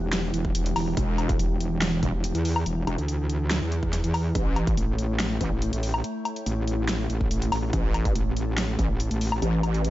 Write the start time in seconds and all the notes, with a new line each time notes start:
Already playing: E1 E3 E4 G4 F#5
0.13 snare, closed hi-hat
0.34 E1, closed hi-hat
0.45 kick
0.55 E1, closed hi-hat
0.66 closed hi-hat
0.76 E1, open hi-hat, low woodblock
0.97 E1 G5, kick, closed hi-hat
1.18 closed hi-hat, low woodblock
1.29 kick, closed hi-hat
1.39 E1, closed hi-hat
1.60 closed hi-hat
1.82 snare, closed hi-hat
2.03 E1, kick, closed hi-hat
2.14 E1
2.24 closed hi-hat
2.35 E2, closed hi-hat
2.45 open hi-hat
2.56 low woodblock
2.66 E1, closed hi-hat
2.87 E1, closed hi-hat, low woodblock
2.98 D2, closed hi-hat
3.08 closed hi-hat
3.30 closed hi-hat
3.51 snare, closed hi-hat
3.62 E2
3.72 closed hi-hat
3.83 kick
3.93 snare, closed hi-hat
4.04 E2, closed hi-hat
4.14 open hi-hat, low woodblock
4.35 A1 A3 C#5 G5, kick, closed hi-hat
4.56 closed hi-hat, low woodblock
4.67 kick, closed hi-hat
4.77 A1, closed hi-hat
4.99 closed hi-hat
5.20 snare, closed hi-hat
5.41 A1, kick, closed hi-hat
5.52 A1
5.62 closed hi-hat
5.73 A1, closed hi-hat
5.83 open hi-hat
5.94 low woodblock
6.04 closed hi-hat
6.25 closed hi-hat, low woodblock
6.36 closed hi-hat
6.46 A1, closed hi-hat
6.68 closed hi-hat
6.89 snare, closed hi-hat
7.10 A1, closed hi-hat
7.21 kick
7.31 A1, closed hi-hat
7.42 closed hi-hat
7.52 A1, open hi-hat, low woodblock
7.73 A1 A5, kick, closed hi-hat
7.94 closed hi-hat, low woodblock
8.05 kick, closed hi-hat
8.15 A1, closed hi-hat
8.37 closed hi-hat
8.58 snare, closed hi-hat
8.79 A1, kick, closed hi-hat
8.90 A1
9.00 closed hi-hat
9.11 A1, closed hi-hat
9.21 open hi-hat
9.32 low woodblock
9.42 A1, closed hi-hat
9.63 closed hi-hat, low woodblock
9.74 closed hi-hat
9.84 closed hi-hat